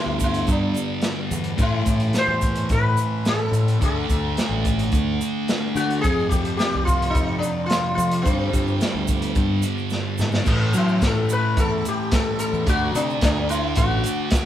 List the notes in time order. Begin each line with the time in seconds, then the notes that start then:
Already playing: G2 D3 G3 E4
0.06 D2
0.20 kick, closed hi-hat, shaker
0.24 E4
0.34 closed hi-hat, shaker
0.47 G2, kick, closed hi-hat, shaker
0.52 D4
0.74 closed hi-hat, shaker
1.02 snare, closed hi-hat, shaker
1.31 E2, closed hi-hat, shaker
1.44 closed hi-hat
1.58 A2 E3 A3, kick, closed hi-hat, shaker
1.62 E4
1.86 A2, kick, closed hi-hat, shaker
2.00 closed hi-hat
2.13 snare, closed hi-hat, shaker
2.18 C5
2.27 E2
2.42 kick, closed hi-hat, shaker
2.56 closed hi-hat
2.69 A2 B4, kick, closed hi-hat, shaker
2.97 closed hi-hat, shaker
3.25 A4, snare, closed hi-hat, shaker
3.52 A2, closed hi-hat, shaker
3.68 closed hi-hat
3.80 D2 D3 A3 D4 A4, kick, closed hi-hat, shaker
4.09 D2, kick, closed hi-hat, shaker
4.37 snare, closed hi-hat, shaker
4.49 A1
4.65 kick, closed hi-hat, shaker
4.79 closed hi-hat
4.92 D2, kick, closed hi-hat, shaker
5.21 closed hi-hat, shaker
5.48 snare, closed hi-hat, shaker
5.75 D3 F#4, snare, closed hi-hat, shaker
5.90 closed hi-hat
6.01 F2 C3 G#4, kick, closed hi-hat, shaker
6.06 F3
6.29 F2 G4, kick, closed hi-hat, shaker
6.45 closed hi-hat
6.57 G4, snare, closed hi-hat, shaker
6.75 C2
6.85 F4, kick, closed hi-hat, shaker
7.02 closed hi-hat
7.10 D#4
7.15 F2, kick, closed hi-hat, shaker
7.39 D4, closed hi-hat
7.43 shaker
7.66 F4, closed hi-hat
7.71 snare, shaker
7.95 F2 F4, closed hi-hat
7.99 shaker
8.11 closed hi-hat
8.22 G2 D3 C4, kick, closed hi-hat
8.27 G3, shaker
8.53 G2, kick, closed hi-hat, shaker
8.67 shaker
8.81 snare, closed hi-hat, shaker
8.94 D2
9.08 kick, closed hi-hat, shaker
9.22 closed hi-hat, shaker
9.35 G2, kick, closed hi-hat, shaker
9.63 closed hi-hat, shaker
9.78 shaker
9.90 snare, shaker
10.18 G#2, snare, shaker
10.32 snare, shaker
10.45 A2 E3 A3, kick, crash, shaker
10.74 F#3 E4, closed hi-hat, shaker
10.88 shaker
11.01 A2, kick, snare, closed hi-hat, shaker
11.07 A4
11.29 B4, closed hi-hat, shaker
11.57 E2 A4, kick, closed hi-hat, shaker
11.85 G4, closed hi-hat, shaker
12.12 A4, kick, snare, closed hi-hat, shaker
12.39 A4, closed hi-hat, shaker
12.53 E2, shaker
12.66 D2 D3 A3 D4 F#4, kick, closed hi-hat, shaker
12.95 C3 D4, closed hi-hat, shaker
13.10 shaker
13.21 D2 D4, kick, snare, closed hi-hat, shaker
13.49 E4, closed hi-hat, shaker
13.76 A1 F#4, kick, closed hi-hat, shaker
14.04 closed hi-hat, shaker
14.31 kick, snare, closed hi-hat, shaker